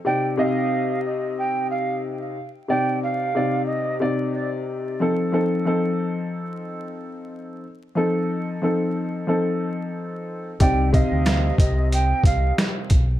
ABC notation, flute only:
X:1
M:4/4
L:1/16
Q:"Swing 16ths" 1/4=91
K:Cdor
V:1 name="Flute"
g2 f4 e2 g2 f2 z4 | g2 f4 e2 z2 d z4 z | z16 | z16 |
g2 f4 e2 g2 f2 z4 |]